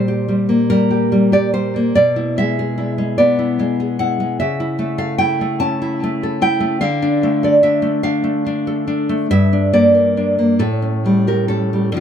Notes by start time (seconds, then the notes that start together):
Already playing: A#2 G3 C5
0.08 G4
0.28 G3
0.49 A#3
0.70 G3 A#4
0.91 G4
1.12 G3
1.32 G4 D5
1.54 G3 C5
1.76 A#3
1.95 B2 D5
2.16 E4
2.38 G#3 E5
2.59 G#4
2.78 E4
2.98 G#3
3.18 B3 D5
3.39 E4
3.59 G#3
3.80 G#4
3.99 E4 F#5
4.20 G#3
4.40 C#3 E5
4.60 E4
4.79 A3
4.98 A4 F5
5.18 E4 G5
5.41 A3
5.60 C#4 A5
5.82 E4
6.03 A3
6.23 A4
6.42 E4 G5
6.60 A3
6.81 D3 F5
7.02 D4
7.23 A3
7.43 A4 D5
7.63 D4 E5
7.82 A3
8.03 D4 F5
8.24 A3
8.46 D4
8.67 A4
8.88 D4
9.09 A3
9.31 G2 E5
9.53 D4
9.73 A#3 D5
9.95 A#4
10.17 D4
10.39 A#3
10.59 A2 A4
10.82 C#4
11.06 G3
11.27 G4 A#4
11.48 C#4 A4
11.73 G3
11.92 D3 F3 D4
11.97 F4